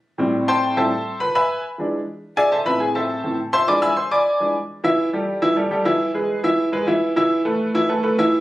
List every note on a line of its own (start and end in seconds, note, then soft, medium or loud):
0.18 0.75 A2 medium
0.18 0.75 G3 medium
0.18 0.76 C4 medium
0.48 0.75 C5 medium
0.48 0.75 G5 loud
0.48 0.75 A5 medium
0.48 0.75 C6 loud
0.76 0.90 A2 medium
0.76 0.90 G3 soft
0.76 0.90 C4 medium
0.76 1.18 A4 medium
0.76 1.18 C5 medium
0.76 1.18 E5 medium
0.76 1.18 A5 medium
1.20 1.34 B4 medium
1.20 1.34 B5 loud
1.35 1.62 B4 medium
1.35 1.62 E5 medium
1.35 1.62 G#5 medium
1.35 1.62 B5 loud
1.78 1.98 E3 medium
1.78 1.98 G#3 soft
1.78 1.99 D4 medium
2.37 2.51 G#4 medium
2.37 2.51 D5 medium
2.37 2.51 E5 medium
2.37 2.51 G#5 loud
2.52 2.66 A4 medium
2.52 2.66 C5 medium
2.52 2.65 E5 medium
2.52 2.66 A5 loud
2.65 3.22 A2 medium
2.65 3.23 E3 soft
2.65 3.23 C4 medium
2.65 2.80 B4 medium
2.65 2.80 E5 medium
2.65 2.80 B5 loud
2.80 2.95 G#4 medium
2.80 2.94 G#5 medium
2.95 3.36 A4 medium
2.95 3.36 C5 medium
2.95 3.36 E5 medium
2.95 3.36 A5 medium
3.24 3.37 A2 soft
3.24 3.37 E3 soft
3.24 3.37 C4 medium
3.53 3.67 C5 medium
3.53 3.67 E5 medium
3.53 3.67 A5 medium
3.53 3.67 C6 loud
3.67 3.87 E3 medium
3.67 3.87 G#3 medium
3.67 3.87 D4 medium
3.67 3.82 D5 medium
3.67 3.81 G#5 medium
3.67 3.81 B5 medium
3.67 3.82 D6 loud
3.82 3.96 E5 medium
3.82 3.97 G#5 medium
3.82 3.97 B5 medium
3.82 3.96 E6 loud
3.97 4.11 C5 medium
3.97 4.11 C6 medium
4.11 4.52 D5 medium
4.11 4.52 G#5 medium
4.11 4.52 B5 medium
4.11 4.52 D6 loud
4.40 4.53 E3 soft
4.40 4.54 G#3 soft
4.40 4.54 D4 medium
4.84 5.08 E3 loud
4.84 5.08 E4 medium
4.84 5.08 E5 loud
5.13 5.37 G3 medium
5.13 5.37 G4 medium
5.13 5.37 A4 medium
5.42 5.54 E3 medium
5.42 5.54 E4 loud
5.42 5.54 E5 medium
5.56 5.68 G3 medium
5.56 5.68 G4 medium
5.56 5.69 A4 medium
5.71 5.83 G3 medium
5.71 5.83 G4 medium
5.71 5.83 A4 medium
5.85 6.09 E3 loud
5.85 6.09 E4 loud
5.85 6.09 E5 medium
6.14 6.38 G#3 medium
6.14 6.38 G#4 medium
6.14 6.39 B4 medium
6.43 6.67 E3 medium
6.43 6.68 E4 medium
6.43 6.68 E5 loud
6.72 6.84 G#3 medium
6.72 6.85 G#4 medium
6.72 6.85 B4 medium
6.87 7.11 E3 loud
6.87 7.11 E4 medium
6.87 7.11 E5 medium
7.16 7.40 E3 loud
7.16 7.40 E4 loud
7.16 7.40 E5 loud
7.45 7.69 A3 medium
7.45 7.69 A4 medium
7.45 7.69 B4 medium
7.74 7.86 E3 loud
7.74 7.87 E4 loud
7.74 7.87 E5 medium
7.89 8.01 A3 medium
7.89 8.01 A4 medium
7.89 8.01 B4 medium
8.03 8.15 A3 medium
8.03 8.15 A4 medium
8.03 8.15 B4 medium
8.18 8.40 E3 loud
8.18 8.40 E4 loud
8.18 8.40 E5 loud